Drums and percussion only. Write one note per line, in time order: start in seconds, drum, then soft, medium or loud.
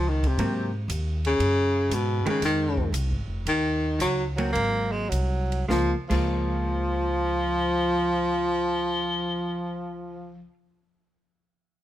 0.23 kick soft
0.23 ride soft
0.39 ride soft
0.90 hi-hat pedal medium
0.90 ride medium
1.25 ride soft
1.40 ride medium
1.91 hi-hat pedal medium
1.91 ride medium
2.26 ride soft
2.42 snare soft
2.42 ride medium
2.77 kick soft
2.94 hi-hat pedal soft
2.94 ride medium
3.47 ride medium
4.00 hi-hat pedal medium
4.00 ride medium
4.38 ride soft
4.55 ride medium
5.12 hi-hat pedal medium
5.12 ride medium
5.52 ride soft
5.70 kick medium
5.70 snare medium
6.10 kick medium
6.10 crash medium